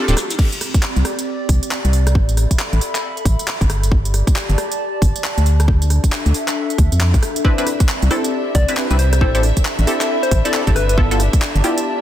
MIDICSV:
0, 0, Header, 1, 8, 480
1, 0, Start_track
1, 0, Key_signature, 0, "major"
1, 0, Tempo, 441176
1, 421, Time_signature, 4, 2, 24, 8
1, 13067, End_track
2, 0, Start_track
2, 0, Title_t, "Ambient pad"
2, 0, Program_c, 0, 92
2, 424, Note_on_c, 0, 60, 75
2, 524, Note_on_c, 0, 67, 72
2, 650, Note_on_c, 0, 74, 90
2, 2337, Note_on_c, 0, 69, 77
2, 2409, Note_on_c, 0, 76, 74
2, 2489, Note_on_c, 0, 83, 87
2, 2979, Note_off_c, 0, 60, 0
2, 3024, Note_off_c, 0, 67, 0
2, 3026, Note_off_c, 0, 74, 0
2, 4022, Note_on_c, 0, 67, 90
2, 4124, Note_on_c, 0, 74, 82
2, 4545, Note_on_c, 0, 81, 78
2, 4798, Note_off_c, 0, 69, 0
2, 4798, Note_off_c, 0, 76, 0
2, 4798, Note_off_c, 0, 83, 0
2, 5938, Note_on_c, 0, 62, 73
2, 6267, Note_on_c, 0, 69, 77
2, 6300, Note_on_c, 0, 76, 89
2, 6827, Note_off_c, 0, 81, 0
2, 6828, Note_off_c, 0, 67, 0
2, 6828, Note_off_c, 0, 74, 0
2, 8105, Note_on_c, 0, 60, 78
2, 8407, Note_on_c, 0, 74, 75
2, 8502, Note_on_c, 0, 67, 88
2, 8826, Note_off_c, 0, 69, 0
2, 8879, Note_off_c, 0, 62, 0
2, 8881, Note_off_c, 0, 76, 0
2, 10023, Note_on_c, 0, 69, 83
2, 10370, Note_on_c, 0, 76, 83
2, 10681, Note_on_c, 0, 83, 68
2, 10704, Note_off_c, 0, 67, 0
2, 10705, Note_off_c, 0, 74, 0
2, 10706, Note_off_c, 0, 60, 0
2, 11705, Note_on_c, 0, 67, 77
2, 11802, Note_on_c, 0, 74, 87
2, 12151, Note_on_c, 0, 81, 86
2, 12481, Note_off_c, 0, 69, 0
2, 12481, Note_off_c, 0, 76, 0
2, 12482, Note_off_c, 0, 83, 0
2, 13067, Note_off_c, 0, 67, 0
2, 13067, Note_off_c, 0, 74, 0
2, 13067, Note_off_c, 0, 81, 0
2, 13067, End_track
3, 0, Start_track
3, 0, Title_t, "Soft synth lead"
3, 0, Program_c, 1, 80
3, 0, Note_on_c, 1, 67, 105
3, 383, Note_off_c, 1, 67, 0
3, 9301, Note_on_c, 1, 74, 99
3, 9489, Note_off_c, 1, 74, 0
3, 9779, Note_on_c, 1, 72, 96
3, 9875, Note_off_c, 1, 72, 0
3, 9928, Note_on_c, 1, 72, 81
3, 9987, Note_off_c, 1, 72, 0
3, 10019, Note_on_c, 1, 72, 90
3, 10115, Note_off_c, 1, 72, 0
3, 10167, Note_on_c, 1, 72, 78
3, 10227, Note_off_c, 1, 72, 0
3, 11129, Note_on_c, 1, 72, 94
3, 11285, Note_off_c, 1, 72, 0
3, 11369, Note_on_c, 1, 74, 93
3, 11526, Note_off_c, 1, 74, 0
3, 11702, Note_on_c, 1, 71, 100
3, 11796, Note_off_c, 1, 71, 0
3, 11851, Note_on_c, 1, 71, 75
3, 11909, Note_off_c, 1, 71, 0
3, 13067, End_track
4, 0, Start_track
4, 0, Title_t, "Violin section"
4, 0, Program_c, 2, 48
4, 0, Note_on_c, 2, 57, 83
4, 0, Note_on_c, 2, 69, 86
4, 433, Note_off_c, 2, 57, 0
4, 434, Note_off_c, 2, 69, 0
4, 8100, Note_on_c, 2, 76, 81
4, 8102, Note_on_c, 2, 62, 88
4, 13067, Note_off_c, 2, 62, 0
4, 13067, Note_off_c, 2, 76, 0
4, 13067, End_track
5, 0, Start_track
5, 0, Title_t, "Synth stab"
5, 0, Program_c, 3, 62
5, 88, Note_on_c, 3, 60, 80
5, 88, Note_on_c, 3, 62, 73
5, 88, Note_on_c, 3, 65, 73
5, 88, Note_on_c, 3, 69, 90
5, 152, Note_off_c, 3, 60, 0
5, 152, Note_off_c, 3, 62, 0
5, 152, Note_off_c, 3, 65, 0
5, 152, Note_off_c, 3, 69, 0
5, 8101, Note_on_c, 3, 60, 85
5, 8101, Note_on_c, 3, 62, 75
5, 8101, Note_on_c, 3, 64, 71
5, 8102, Note_on_c, 3, 71, 87
5, 8227, Note_off_c, 3, 60, 0
5, 8227, Note_off_c, 3, 62, 0
5, 8227, Note_off_c, 3, 64, 0
5, 8227, Note_off_c, 3, 71, 0
5, 8249, Note_on_c, 3, 60, 79
5, 8249, Note_on_c, 3, 64, 75
5, 8249, Note_on_c, 3, 71, 88
5, 8250, Note_on_c, 3, 62, 69
5, 8357, Note_off_c, 3, 60, 0
5, 8357, Note_off_c, 3, 64, 0
5, 8357, Note_off_c, 3, 71, 0
5, 8358, Note_off_c, 3, 62, 0
5, 8821, Note_on_c, 3, 64, 70
5, 8822, Note_on_c, 3, 60, 79
5, 8822, Note_on_c, 3, 62, 69
5, 8822, Note_on_c, 3, 69, 92
5, 9414, Note_off_c, 3, 60, 0
5, 9414, Note_off_c, 3, 62, 0
5, 9414, Note_off_c, 3, 64, 0
5, 9414, Note_off_c, 3, 69, 0
5, 9449, Note_on_c, 3, 60, 79
5, 9450, Note_on_c, 3, 62, 70
5, 9450, Note_on_c, 3, 64, 76
5, 9450, Note_on_c, 3, 71, 91
5, 9519, Note_off_c, 3, 60, 0
5, 9519, Note_off_c, 3, 62, 0
5, 9519, Note_off_c, 3, 64, 0
5, 9519, Note_off_c, 3, 71, 0
5, 9541, Note_on_c, 3, 60, 85
5, 9542, Note_on_c, 3, 62, 77
5, 9542, Note_on_c, 3, 71, 94
5, 9543, Note_on_c, 3, 64, 79
5, 9654, Note_off_c, 3, 60, 0
5, 9654, Note_off_c, 3, 62, 0
5, 9654, Note_off_c, 3, 64, 0
5, 9654, Note_off_c, 3, 71, 0
5, 9690, Note_on_c, 3, 60, 80
5, 9690, Note_on_c, 3, 62, 75
5, 9690, Note_on_c, 3, 64, 74
5, 9691, Note_on_c, 3, 71, 85
5, 9753, Note_off_c, 3, 60, 0
5, 9753, Note_off_c, 3, 62, 0
5, 9753, Note_off_c, 3, 64, 0
5, 9754, Note_off_c, 3, 71, 0
5, 10021, Note_on_c, 3, 60, 80
5, 10021, Note_on_c, 3, 64, 71
5, 10021, Note_on_c, 3, 67, 71
5, 10021, Note_on_c, 3, 69, 84
5, 10147, Note_off_c, 3, 60, 0
5, 10147, Note_off_c, 3, 64, 0
5, 10147, Note_off_c, 3, 67, 0
5, 10147, Note_off_c, 3, 69, 0
5, 10169, Note_on_c, 3, 60, 79
5, 10169, Note_on_c, 3, 64, 73
5, 10169, Note_on_c, 3, 67, 73
5, 10169, Note_on_c, 3, 69, 89
5, 10277, Note_off_c, 3, 60, 0
5, 10277, Note_off_c, 3, 64, 0
5, 10277, Note_off_c, 3, 67, 0
5, 10277, Note_off_c, 3, 69, 0
5, 10740, Note_on_c, 3, 69, 84
5, 10741, Note_on_c, 3, 60, 76
5, 10741, Note_on_c, 3, 64, 73
5, 10741, Note_on_c, 3, 67, 73
5, 11333, Note_off_c, 3, 60, 0
5, 11333, Note_off_c, 3, 64, 0
5, 11333, Note_off_c, 3, 69, 0
5, 11334, Note_off_c, 3, 67, 0
5, 11370, Note_on_c, 3, 60, 78
5, 11370, Note_on_c, 3, 64, 71
5, 11370, Note_on_c, 3, 67, 73
5, 11370, Note_on_c, 3, 69, 89
5, 11439, Note_off_c, 3, 60, 0
5, 11439, Note_off_c, 3, 64, 0
5, 11439, Note_off_c, 3, 67, 0
5, 11439, Note_off_c, 3, 69, 0
5, 11463, Note_on_c, 3, 64, 79
5, 11463, Note_on_c, 3, 67, 82
5, 11464, Note_on_c, 3, 60, 84
5, 11464, Note_on_c, 3, 69, 97
5, 11574, Note_off_c, 3, 67, 0
5, 11575, Note_off_c, 3, 60, 0
5, 11575, Note_off_c, 3, 64, 0
5, 11575, Note_off_c, 3, 69, 0
5, 11611, Note_on_c, 3, 67, 70
5, 11612, Note_on_c, 3, 60, 83
5, 11612, Note_on_c, 3, 64, 72
5, 11612, Note_on_c, 3, 69, 89
5, 11674, Note_off_c, 3, 60, 0
5, 11674, Note_off_c, 3, 64, 0
5, 11674, Note_off_c, 3, 67, 0
5, 11674, Note_off_c, 3, 69, 0
5, 11942, Note_on_c, 3, 59, 80
5, 11942, Note_on_c, 3, 64, 73
5, 11942, Note_on_c, 3, 65, 70
5, 11942, Note_on_c, 3, 69, 88
5, 12067, Note_off_c, 3, 64, 0
5, 12067, Note_off_c, 3, 65, 0
5, 12067, Note_off_c, 3, 69, 0
5, 12068, Note_off_c, 3, 59, 0
5, 12089, Note_on_c, 3, 64, 70
5, 12089, Note_on_c, 3, 65, 73
5, 12090, Note_on_c, 3, 59, 77
5, 12090, Note_on_c, 3, 69, 94
5, 12197, Note_off_c, 3, 64, 0
5, 12197, Note_off_c, 3, 65, 0
5, 12198, Note_off_c, 3, 59, 0
5, 12198, Note_off_c, 3, 69, 0
5, 12662, Note_on_c, 3, 59, 81
5, 12662, Note_on_c, 3, 64, 74
5, 12663, Note_on_c, 3, 65, 69
5, 12663, Note_on_c, 3, 67, 88
5, 13067, Note_off_c, 3, 59, 0
5, 13067, Note_off_c, 3, 64, 0
5, 13067, Note_off_c, 3, 65, 0
5, 13067, Note_off_c, 3, 67, 0
5, 13067, End_track
6, 0, Start_track
6, 0, Title_t, "FM bass"
6, 0, Program_c, 4, 39
6, 91, Note_on_c, 4, 26, 105
6, 163, Note_off_c, 4, 26, 0
6, 1049, Note_on_c, 4, 36, 93
6, 1122, Note_off_c, 4, 36, 0
6, 1621, Note_on_c, 4, 36, 94
6, 1739, Note_off_c, 4, 36, 0
6, 2009, Note_on_c, 4, 36, 93
6, 2341, Note_on_c, 4, 33, 97
6, 2357, Note_off_c, 4, 36, 0
6, 2682, Note_off_c, 4, 33, 0
6, 2969, Note_on_c, 4, 33, 99
6, 3042, Note_off_c, 4, 33, 0
6, 3540, Note_on_c, 4, 33, 98
6, 3659, Note_off_c, 4, 33, 0
6, 3929, Note_on_c, 4, 31, 98
6, 4601, Note_off_c, 4, 31, 0
6, 4889, Note_on_c, 4, 31, 102
6, 4962, Note_off_c, 4, 31, 0
6, 5460, Note_on_c, 4, 31, 101
6, 5579, Note_off_c, 4, 31, 0
6, 5848, Note_on_c, 4, 38, 96
6, 6521, Note_off_c, 4, 38, 0
6, 6810, Note_on_c, 4, 38, 101
6, 6883, Note_off_c, 4, 38, 0
6, 7381, Note_on_c, 4, 38, 91
6, 7500, Note_off_c, 4, 38, 0
6, 7530, Note_on_c, 4, 41, 99
6, 7768, Note_on_c, 4, 33, 84
6, 7785, Note_off_c, 4, 41, 0
6, 7842, Note_off_c, 4, 33, 0
6, 8732, Note_on_c, 4, 36, 100
6, 8804, Note_off_c, 4, 36, 0
6, 9301, Note_on_c, 4, 36, 101
6, 9420, Note_off_c, 4, 36, 0
6, 9688, Note_on_c, 4, 36, 93
6, 10022, Note_on_c, 4, 33, 97
6, 10038, Note_off_c, 4, 36, 0
6, 10362, Note_off_c, 4, 33, 0
6, 10649, Note_on_c, 4, 33, 99
6, 10722, Note_off_c, 4, 33, 0
6, 11222, Note_on_c, 4, 33, 96
6, 11340, Note_off_c, 4, 33, 0
6, 11610, Note_on_c, 4, 31, 97
6, 12282, Note_off_c, 4, 31, 0
6, 12569, Note_on_c, 4, 31, 102
6, 12642, Note_off_c, 4, 31, 0
6, 13067, End_track
7, 0, Start_track
7, 0, Title_t, "Shekere"
7, 97, Note_on_c, 9, 82, 24
7, 189, Note_off_c, 9, 82, 0
7, 189, Note_on_c, 9, 82, 85
7, 298, Note_off_c, 9, 82, 0
7, 333, Note_on_c, 9, 82, 45
7, 442, Note_off_c, 9, 82, 0
7, 13067, End_track
8, 0, Start_track
8, 0, Title_t, "Drums"
8, 92, Note_on_c, 9, 42, 56
8, 183, Note_on_c, 9, 37, 57
8, 183, Note_on_c, 9, 46, 98
8, 200, Note_off_c, 9, 42, 0
8, 292, Note_off_c, 9, 37, 0
8, 292, Note_off_c, 9, 46, 0
8, 331, Note_on_c, 9, 42, 72
8, 421, Note_on_c, 9, 36, 116
8, 423, Note_on_c, 9, 49, 98
8, 440, Note_off_c, 9, 42, 0
8, 530, Note_off_c, 9, 36, 0
8, 532, Note_off_c, 9, 49, 0
8, 571, Note_on_c, 9, 42, 56
8, 664, Note_on_c, 9, 37, 31
8, 664, Note_on_c, 9, 46, 103
8, 680, Note_off_c, 9, 42, 0
8, 773, Note_off_c, 9, 37, 0
8, 773, Note_off_c, 9, 46, 0
8, 809, Note_on_c, 9, 36, 105
8, 810, Note_on_c, 9, 42, 67
8, 900, Note_on_c, 9, 39, 113
8, 918, Note_off_c, 9, 36, 0
8, 919, Note_off_c, 9, 42, 0
8, 1009, Note_off_c, 9, 39, 0
8, 1049, Note_on_c, 9, 42, 38
8, 1142, Note_on_c, 9, 37, 60
8, 1142, Note_on_c, 9, 46, 91
8, 1158, Note_off_c, 9, 42, 0
8, 1250, Note_off_c, 9, 37, 0
8, 1250, Note_off_c, 9, 46, 0
8, 1291, Note_on_c, 9, 42, 65
8, 1400, Note_off_c, 9, 42, 0
8, 1621, Note_on_c, 9, 36, 102
8, 1621, Note_on_c, 9, 46, 104
8, 1730, Note_off_c, 9, 36, 0
8, 1730, Note_off_c, 9, 46, 0
8, 1771, Note_on_c, 9, 42, 63
8, 1863, Note_on_c, 9, 39, 120
8, 1880, Note_off_c, 9, 42, 0
8, 1971, Note_off_c, 9, 39, 0
8, 2011, Note_on_c, 9, 42, 51
8, 2101, Note_on_c, 9, 46, 99
8, 2119, Note_off_c, 9, 42, 0
8, 2210, Note_off_c, 9, 46, 0
8, 2249, Note_on_c, 9, 37, 57
8, 2249, Note_on_c, 9, 42, 68
8, 2341, Note_on_c, 9, 36, 120
8, 2358, Note_off_c, 9, 37, 0
8, 2358, Note_off_c, 9, 42, 0
8, 2449, Note_off_c, 9, 36, 0
8, 2489, Note_on_c, 9, 42, 52
8, 2581, Note_on_c, 9, 37, 30
8, 2581, Note_on_c, 9, 46, 104
8, 2598, Note_off_c, 9, 42, 0
8, 2690, Note_off_c, 9, 37, 0
8, 2690, Note_off_c, 9, 46, 0
8, 2729, Note_on_c, 9, 36, 61
8, 2730, Note_on_c, 9, 42, 65
8, 2821, Note_on_c, 9, 39, 118
8, 2838, Note_off_c, 9, 36, 0
8, 2839, Note_off_c, 9, 42, 0
8, 2930, Note_off_c, 9, 39, 0
8, 2970, Note_on_c, 9, 42, 37
8, 3061, Note_on_c, 9, 46, 96
8, 3078, Note_off_c, 9, 42, 0
8, 3170, Note_off_c, 9, 46, 0
8, 3210, Note_on_c, 9, 39, 62
8, 3210, Note_on_c, 9, 42, 62
8, 3319, Note_off_c, 9, 39, 0
8, 3319, Note_off_c, 9, 42, 0
8, 3451, Note_on_c, 9, 42, 35
8, 3540, Note_on_c, 9, 36, 110
8, 3543, Note_on_c, 9, 46, 105
8, 3560, Note_off_c, 9, 42, 0
8, 3649, Note_off_c, 9, 36, 0
8, 3651, Note_off_c, 9, 46, 0
8, 3692, Note_on_c, 9, 42, 61
8, 3783, Note_on_c, 9, 39, 124
8, 3801, Note_off_c, 9, 42, 0
8, 3891, Note_off_c, 9, 39, 0
8, 3929, Note_on_c, 9, 36, 103
8, 3933, Note_on_c, 9, 42, 48
8, 4022, Note_on_c, 9, 37, 57
8, 4022, Note_on_c, 9, 46, 90
8, 4037, Note_off_c, 9, 36, 0
8, 4042, Note_off_c, 9, 42, 0
8, 4131, Note_off_c, 9, 37, 0
8, 4131, Note_off_c, 9, 46, 0
8, 4172, Note_on_c, 9, 42, 64
8, 4260, Note_on_c, 9, 36, 124
8, 4281, Note_off_c, 9, 42, 0
8, 4369, Note_off_c, 9, 36, 0
8, 4410, Note_on_c, 9, 42, 52
8, 4503, Note_on_c, 9, 37, 30
8, 4503, Note_on_c, 9, 46, 96
8, 4519, Note_off_c, 9, 42, 0
8, 4612, Note_off_c, 9, 37, 0
8, 4612, Note_off_c, 9, 46, 0
8, 4648, Note_on_c, 9, 36, 107
8, 4651, Note_on_c, 9, 42, 64
8, 4742, Note_on_c, 9, 39, 121
8, 4757, Note_off_c, 9, 36, 0
8, 4760, Note_off_c, 9, 42, 0
8, 4851, Note_off_c, 9, 39, 0
8, 4891, Note_on_c, 9, 42, 36
8, 4983, Note_on_c, 9, 37, 58
8, 4983, Note_on_c, 9, 46, 86
8, 5000, Note_off_c, 9, 42, 0
8, 5092, Note_off_c, 9, 37, 0
8, 5092, Note_off_c, 9, 46, 0
8, 5131, Note_on_c, 9, 42, 62
8, 5239, Note_off_c, 9, 42, 0
8, 5460, Note_on_c, 9, 36, 114
8, 5463, Note_on_c, 9, 46, 102
8, 5569, Note_off_c, 9, 36, 0
8, 5572, Note_off_c, 9, 46, 0
8, 5610, Note_on_c, 9, 42, 63
8, 5702, Note_on_c, 9, 39, 127
8, 5719, Note_off_c, 9, 42, 0
8, 5811, Note_off_c, 9, 39, 0
8, 5850, Note_on_c, 9, 42, 49
8, 5940, Note_on_c, 9, 46, 82
8, 5959, Note_off_c, 9, 42, 0
8, 6049, Note_off_c, 9, 46, 0
8, 6091, Note_on_c, 9, 37, 58
8, 6091, Note_on_c, 9, 42, 62
8, 6180, Note_on_c, 9, 36, 122
8, 6200, Note_off_c, 9, 37, 0
8, 6200, Note_off_c, 9, 42, 0
8, 6289, Note_off_c, 9, 36, 0
8, 6330, Note_on_c, 9, 42, 53
8, 6422, Note_on_c, 9, 37, 28
8, 6422, Note_on_c, 9, 46, 90
8, 6439, Note_off_c, 9, 42, 0
8, 6531, Note_off_c, 9, 37, 0
8, 6531, Note_off_c, 9, 46, 0
8, 6568, Note_on_c, 9, 36, 61
8, 6570, Note_on_c, 9, 42, 64
8, 6661, Note_on_c, 9, 39, 116
8, 6677, Note_off_c, 9, 36, 0
8, 6679, Note_off_c, 9, 42, 0
8, 6770, Note_off_c, 9, 39, 0
8, 6810, Note_on_c, 9, 42, 39
8, 6902, Note_on_c, 9, 46, 91
8, 6919, Note_off_c, 9, 42, 0
8, 7011, Note_off_c, 9, 46, 0
8, 7050, Note_on_c, 9, 39, 67
8, 7050, Note_on_c, 9, 42, 64
8, 7159, Note_off_c, 9, 39, 0
8, 7159, Note_off_c, 9, 42, 0
8, 7291, Note_on_c, 9, 42, 35
8, 7381, Note_on_c, 9, 36, 105
8, 7381, Note_on_c, 9, 46, 101
8, 7400, Note_off_c, 9, 42, 0
8, 7489, Note_off_c, 9, 36, 0
8, 7490, Note_off_c, 9, 46, 0
8, 7530, Note_on_c, 9, 42, 62
8, 7622, Note_on_c, 9, 39, 116
8, 7639, Note_off_c, 9, 42, 0
8, 7730, Note_off_c, 9, 39, 0
8, 7769, Note_on_c, 9, 36, 106
8, 7770, Note_on_c, 9, 42, 50
8, 7861, Note_on_c, 9, 37, 52
8, 7861, Note_on_c, 9, 46, 84
8, 7878, Note_off_c, 9, 36, 0
8, 7879, Note_off_c, 9, 42, 0
8, 7970, Note_off_c, 9, 37, 0
8, 7970, Note_off_c, 9, 46, 0
8, 8009, Note_on_c, 9, 42, 65
8, 8101, Note_on_c, 9, 36, 110
8, 8118, Note_off_c, 9, 42, 0
8, 8210, Note_off_c, 9, 36, 0
8, 8250, Note_on_c, 9, 42, 53
8, 8340, Note_on_c, 9, 37, 28
8, 8340, Note_on_c, 9, 46, 90
8, 8359, Note_off_c, 9, 42, 0
8, 8449, Note_off_c, 9, 37, 0
8, 8449, Note_off_c, 9, 46, 0
8, 8488, Note_on_c, 9, 42, 69
8, 8489, Note_on_c, 9, 36, 104
8, 8581, Note_on_c, 9, 39, 118
8, 8597, Note_off_c, 9, 42, 0
8, 8598, Note_off_c, 9, 36, 0
8, 8690, Note_off_c, 9, 39, 0
8, 8730, Note_on_c, 9, 42, 39
8, 8821, Note_on_c, 9, 37, 57
8, 8821, Note_on_c, 9, 46, 89
8, 8838, Note_off_c, 9, 42, 0
8, 8929, Note_off_c, 9, 37, 0
8, 8929, Note_off_c, 9, 46, 0
8, 8970, Note_on_c, 9, 42, 67
8, 9079, Note_off_c, 9, 42, 0
8, 9301, Note_on_c, 9, 36, 108
8, 9301, Note_on_c, 9, 46, 101
8, 9410, Note_off_c, 9, 36, 0
8, 9410, Note_off_c, 9, 46, 0
8, 9449, Note_on_c, 9, 42, 67
8, 9540, Note_on_c, 9, 39, 121
8, 9558, Note_off_c, 9, 42, 0
8, 9649, Note_off_c, 9, 39, 0
8, 9689, Note_on_c, 9, 42, 50
8, 9780, Note_on_c, 9, 46, 89
8, 9798, Note_off_c, 9, 42, 0
8, 9889, Note_off_c, 9, 46, 0
8, 9930, Note_on_c, 9, 37, 54
8, 9930, Note_on_c, 9, 42, 68
8, 10022, Note_on_c, 9, 36, 111
8, 10039, Note_off_c, 9, 37, 0
8, 10039, Note_off_c, 9, 42, 0
8, 10130, Note_off_c, 9, 36, 0
8, 10171, Note_on_c, 9, 42, 57
8, 10262, Note_on_c, 9, 37, 28
8, 10262, Note_on_c, 9, 46, 100
8, 10279, Note_off_c, 9, 42, 0
8, 10371, Note_off_c, 9, 37, 0
8, 10371, Note_off_c, 9, 46, 0
8, 10410, Note_on_c, 9, 36, 59
8, 10410, Note_on_c, 9, 42, 70
8, 10501, Note_on_c, 9, 39, 115
8, 10519, Note_off_c, 9, 36, 0
8, 10519, Note_off_c, 9, 42, 0
8, 10609, Note_off_c, 9, 39, 0
8, 10649, Note_on_c, 9, 42, 41
8, 10741, Note_on_c, 9, 46, 93
8, 10758, Note_off_c, 9, 42, 0
8, 10850, Note_off_c, 9, 46, 0
8, 10890, Note_on_c, 9, 39, 59
8, 10890, Note_on_c, 9, 42, 71
8, 10999, Note_off_c, 9, 39, 0
8, 10999, Note_off_c, 9, 42, 0
8, 11132, Note_on_c, 9, 42, 37
8, 11222, Note_on_c, 9, 36, 104
8, 11222, Note_on_c, 9, 46, 103
8, 11241, Note_off_c, 9, 42, 0
8, 11331, Note_off_c, 9, 36, 0
8, 11331, Note_off_c, 9, 46, 0
8, 11372, Note_on_c, 9, 42, 70
8, 11464, Note_on_c, 9, 39, 111
8, 11480, Note_off_c, 9, 42, 0
8, 11573, Note_off_c, 9, 39, 0
8, 11610, Note_on_c, 9, 36, 103
8, 11611, Note_on_c, 9, 42, 55
8, 11705, Note_on_c, 9, 37, 52
8, 11705, Note_on_c, 9, 46, 89
8, 11719, Note_off_c, 9, 36, 0
8, 11720, Note_off_c, 9, 42, 0
8, 11814, Note_off_c, 9, 37, 0
8, 11814, Note_off_c, 9, 46, 0
8, 11852, Note_on_c, 9, 42, 67
8, 11942, Note_on_c, 9, 36, 115
8, 11961, Note_off_c, 9, 42, 0
8, 12051, Note_off_c, 9, 36, 0
8, 12092, Note_on_c, 9, 42, 59
8, 12183, Note_on_c, 9, 37, 28
8, 12183, Note_on_c, 9, 46, 101
8, 12200, Note_off_c, 9, 42, 0
8, 12292, Note_off_c, 9, 37, 0
8, 12292, Note_off_c, 9, 46, 0
8, 12330, Note_on_c, 9, 36, 102
8, 12330, Note_on_c, 9, 42, 69
8, 12422, Note_on_c, 9, 39, 113
8, 12439, Note_off_c, 9, 36, 0
8, 12439, Note_off_c, 9, 42, 0
8, 12531, Note_off_c, 9, 39, 0
8, 12573, Note_on_c, 9, 42, 41
8, 12663, Note_on_c, 9, 46, 95
8, 12681, Note_off_c, 9, 42, 0
8, 12772, Note_off_c, 9, 46, 0
8, 12813, Note_on_c, 9, 42, 71
8, 12921, Note_off_c, 9, 42, 0
8, 13067, End_track
0, 0, End_of_file